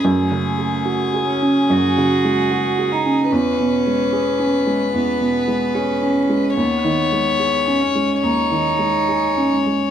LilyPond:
<<
  \new Staff \with { instrumentName = "Violin" } { \time 4/4 \key cis \minor \tempo 4 = 73 gis'1 | b'1 | cis''2 cis''2 | }
  \new Staff \with { instrumentName = "Cello" } { \time 4/4 \key cis \minor a4. cis'8 fis'4. dis'8 | cis'2 b4 cis'4 | b4. cis'8 dis'4. gis8 | }
  \new Staff \with { instrumentName = "Upright piano" } { \clef bass \time 4/4 \key cis \minor \tuplet 3/2 { fis,8 cis8 gis'8 fis'8 gis'8 cis'8 fis,8 cis8 gis8 fis'8 gis'8 cis'8 } | \tuplet 3/2 { e,8 b,8 gis8 gis'8 cis'8 gis8 e,8 b,8 gis8 gis'8 cis'8 gis8 } | \tuplet 3/2 { dis,8 dis8 gis8 gis'8 cis'8 gis8 dis,8 dis8 gis8 gis'8 cis'8 gis8 } | }
>>